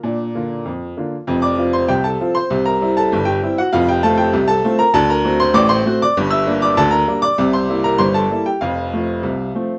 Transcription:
<<
  \new Staff \with { instrumentName = "Upright piano" } { \time 2/4 \key bes \major \tempo 4 = 98 <bes' bes''>4 r4 | \key f \major r16 <d'' d'''>8 <c'' c'''>16 <g' g''>16 <a' a''>8 <c'' c'''>16~ | <c'' c'''>16 <bes' bes''>8 <a' a''>8 <g' g''>8 <ges' ges''>16 | <f' f''>16 <g' g''>16 <a' a''>16 <g' g''>8 <a' a''>8 <bes' bes''>16 |
<a' a''>16 <bes' bes''>8 <c'' c'''>16 <d'' d'''>16 <c'' c'''>8 <d'' d'''>16 | r16 <e'' e'''>8 <d'' d'''>16 <a' a''>16 <bes' bes''>8 <d'' d'''>16~ | <d'' d'''>16 <c'' c'''>8 <bes' bes''>16 <c'' c'''>16 <a' a''>8 <g' g''>16 | <f' f''>2 | }
  \new Staff \with { instrumentName = "Upright piano" } { \clef bass \time 2/4 \key bes \major <bes, d'>8 <d bes f'>8 f,8 <d bes f'>8 | \key f \major <f,, f,>8 <f c' f'>8 <c, c>8 <f c' f'>8 | <c, c>8 <g c' e'>8 <g,, g,>8 <g c' e'>8 | <f,, f,>8 <a c' f'>8 <c, c>8 <a c' f'>8 |
<d, d>8 <a c' fis'>8 <a,, a,>8 <a c' fis'>8 | <g,, g,>8 <g bes d'>8 <d, d>8 <g bes d'>8 | <c, c>8 <g bes e'>8 <g,, g,>8 <g bes e'>8 | <f,, f,>8 <f a c'>8 <c, c>8 <f a c'>8 | }
>>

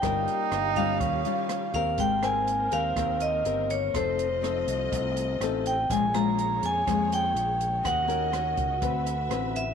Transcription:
<<
  \new Staff \with { instrumentName = "Vibraphone" } { \time 4/4 \key ees \mixolydian \tempo 4 = 123 g''4. f''2 f''8 | \key aes \major g''8 aes''4 f''4 ees''4 des''8 | c''2.~ c''8 g''8 | aes''8 bes''8 bes''8 aes''4 g''4. |
ges''2.~ ges''8 e''8 | }
  \new Staff \with { instrumentName = "String section" } { \time 4/4 \key ees \mixolydian << { f''1 | \key aes \major c''1 | ees''1 | des''1 |
ees''2 e''2 | } \\ { <bes g'>2 <des' g'>2 | <bes bes'>1 | <a f'>1 | <bes aes'>1 |
<des' ges'>2 b'2 | } >> }
  \new Staff \with { instrumentName = "Tenor saxophone" } { \time 4/4 \key ees \mixolydian ees'2 des'4. r8 | \key aes \major r1 | r1 | r1 |
r1 | }
  \new Staff \with { instrumentName = "Nylon-string guitar" } { \time 4/4 \key ees \mixolydian << { <des' f' bes'>4. <g des' f'>4 <g des' f'>4 <c' g' bes'>8~ | \key aes \major <c' g' bes'>8 <c' bes'>4 <c' g' bes'>8 <c' g' bes'>4 <c' g' bes'>4 | <c' ees' a'>8 r8 <c' ees' a'>2 <c' ees' a'>8 r8 | <aes des' f'>8 <aes des' f'>4. <aes des' f'>2 |
<des' ges' bes'>8 <des' ges' bes'>8 <des' ges' bes'>8 r8 <c' fis' b'>8 r8 <c' fis' b'>8 r8 | } \\ { g2 ees2 | aes2 ees2 | f2 c2 | bes,2 f2 |
ees2 d2 | } >> }
  \new Staff \with { instrumentName = "Fingered electric bass" } { \clef bass \time 4/4 \key ees \mixolydian g,,8 r8 g,,4 ees,8 r4 ees,8 | \key aes \major aes,,4. ees,8 ees,4 g,,4 | f,,4. c,8 c,4 a,,4 | bes,,4. f,8 f,4 bes,,4 |
ees,4. des,8 d,4 a,,4 | }
  \new DrumStaff \with { instrumentName = "Drums" } \drummode { \time 4/4 <hh bd ss>8 hh8 <hh ss>8 <hh bd>8 <hh bd>8 hh8 <hh ss>8 <hh bd>8 | <hh bd>8 <hh ss>8 hh8 hh8 <hh bd ss>8 hh8 hh8 hh8 | <hh bd ss>8 hh8 <hh ss>8 hh8 <hh bd>8 hh8 <hh ss>8 hh8 | <hh bd>8 <hh ss>8 hh8 hh8 <hh bd ss>8 hh8 hh8 hh8 |
<hh bd ss>8 hh8 <hh ss>8 <hh bd>8 <hh bd>8 hh8 <hh ss>8 hh8 | }
>>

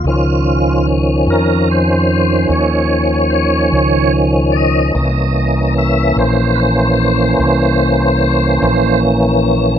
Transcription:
<<
  \new Staff \with { instrumentName = "Tonewheel organ" } { \time 12/8 \key des \lydian \tempo 4. = 49 f'4 r8 bes'8 c''4 des''4 <c'' des''>4 r8 <d'' ees''>8~ | <d'' ees''>4 e''8 c''8 <b' c''>2. r4 | }
  \new Staff \with { instrumentName = "Tonewheel organ" } { \clef bass \time 12/8 \key des \lydian <ees f des'>1. | <e bes des'>1. | }
  \new Staff \with { instrumentName = "Fretless electric bass" } { \clef bass \time 12/8 \key des \lydian des,4. f,4. ees,4. des,4. | c,4. bes,,4. c,4. bes,,4. | }
>>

